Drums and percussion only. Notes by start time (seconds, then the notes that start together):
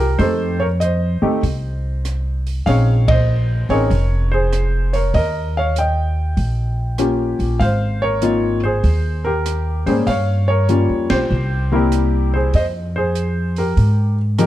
0.19 kick, open hi-hat
0.81 closed hi-hat
1.43 kick, open hi-hat
2.05 cross-stick, closed hi-hat
2.47 open hi-hat
2.67 kick, open hi-hat
3.08 kick, ride
3.70 open hi-hat
3.91 kick, open hi-hat
4.53 cross-stick, closed hi-hat
4.94 open hi-hat
5.14 kick, open hi-hat
5.76 closed hi-hat
6.37 kick, open hi-hat
6.98 cross-stick, closed hi-hat
7.40 open hi-hat
7.60 kick, open hi-hat
8.22 closed hi-hat
8.84 kick, open hi-hat
9.46 cross-stick, closed hi-hat
9.87 open hi-hat
10.07 kick, open hi-hat
10.69 closed hi-hat
11.10 snare, ride
11.92 cross-stick, closed hi-hat
12.54 kick, open hi-hat
13.15 closed hi-hat
13.56 open hi-hat
13.77 kick, open hi-hat
14.38 cross-stick, closed hi-hat